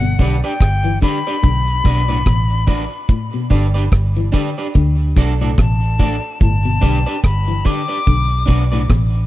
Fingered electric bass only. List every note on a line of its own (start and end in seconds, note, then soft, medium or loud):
0.00 0.15 G1 loud
0.20 0.41 B1 medium
0.61 0.98 G1 medium
1.44 1.81 B1 loud
1.85 2.22 B1 medium
2.27 2.86 A1 medium
3.52 3.89 G1 loud
3.92 4.30 G1 medium
4.76 5.13 D2 loud
5.17 5.54 B1 medium
5.59 6.17 A1 medium
6.41 6.79 G1 loud
6.83 7.04 B1 medium
7.25 7.62 G1 medium
8.08 8.45 B1 loud
8.49 8.86 B1 medium
8.90 9.27 A1 medium